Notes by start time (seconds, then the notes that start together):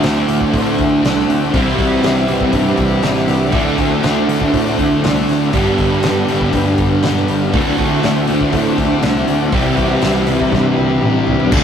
Already playing: D3 E3 A3 C4 D4 F#4 C5 E5 F#5 D6
0.03 D2 D3 A3 D4, snare, open hi-hat
0.27 D2 E3 D4, open hi-hat
0.32 A3
0.41 kick
0.52 A2 D3 A3 C4 D4, kick, open hi-hat
0.78 D2 E3, kick, open hi-hat
1.02 C2 D3 A3 D4, snare, open hi-hat
1.19 snare
1.28 D2 C4, open hi-hat
1.52 C2 C3 E3 G3 C4 B4, kick, open hi-hat
1.57 C4 E4
1.77 C2 F#4, kick, open hi-hat
2.02 C2 C3 G3 C4, snare, open hi-hat
2.27 C2 E3 C4, open hi-hat
2.31 G3
2.41 kick
2.52 G2 C3 G3 C4 D4, kick, open hi-hat
2.77 C2 E3, kick, open hi-hat
3.03 A1 C3 G3, snare, open hi-hat
3.07 C4
3.16 snare
3.28 C2 D4, snare, open hi-hat
3.51 D2 D3 E3 A3 C4 F#4 C5, kick, open hi-hat
3.56 D4
3.78 D2 F#4, kick, open hi-hat
4.02 D2 D3 A3, snare, open hi-hat
4.07 D4
4.27 D2 E3 D4, open hi-hat
4.32 A3
4.41 kick
4.52 A2 D3 A3 C4 D4, kick, open hi-hat
4.77 D2 E3, kick, open hi-hat
5.02 C2 D3 A3 D4, snare, open hi-hat
5.17 snare
5.29 D2 C4, snare, open hi-hat
5.53 G1 G2 D3 G3 B3 D4 G4 B4 G5, kick, open hi-hat
5.57 G3
5.78 G1, kick, open hi-hat
6.03 G1 G2 D3 B3, snare, open hi-hat
6.08 G3
6.28 G1 D3 G3 B3, open hi-hat
6.41 kick
6.53 D2 G2 D3 G3 D4, kick, open hi-hat
6.78 G1 B3, kick, open hi-hat
7.03 E1 G2 D3 B3, snare, open hi-hat
7.07 G3
7.17 snare
7.28 G1 D4, open hi-hat
7.52 D2 D3 E3 A3 C4 F#4 C5 E5 F#5 D6, kick, open hi-hat
7.56 D4
7.78 D2 F#4, kick, open hi-hat
8.03 D2 D3 A3 D4, snare, open hi-hat
8.28 D2 E3 D4, open hi-hat
8.32 A3
8.41 kick
8.52 A2 D3 A3 C4 D4, kick, open hi-hat
8.78 D2 E3, kick, open hi-hat
9.03 C2 D3 A3 D4, snare, open hi-hat
9.16 snare
9.27 D2 C4, open hi-hat
9.51 C2 C3 E3 G3 C4 E4 B4, kick, open hi-hat
9.77 C2 F#4, kick, open hi-hat
10.02 C2 C3 G3, snare, open hi-hat
10.06 C4
10.27 C2 E3 C4, open hi-hat
10.31 G3
10.40 kick
10.52 G2 C3 G3 D4, kick, snare
10.57 C4
10.77 C2 E3, high tom
10.90 high tom
11.02 A1 C3 G3 C4, mid tom
11.27 C2 D4, floor tom
11.40 floor tom
11.51 D2 D3 E3 A3 C4 F#4 A4 C5 E5 F#5 D6, kick, crash
11.56 D4